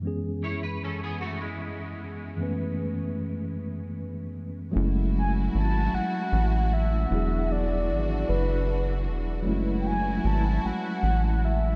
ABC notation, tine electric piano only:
X:1
M:6/8
L:1/8
Q:3/8=51
K:F#m
V:1 name="Tine electric piano"
[F,,E,G,B,CG]6 | [F,,E,G,A,B,CB]6 | [F,G,A,CE]6 | [F,B,DEG]6 |
[F,G,A,CE]6 |]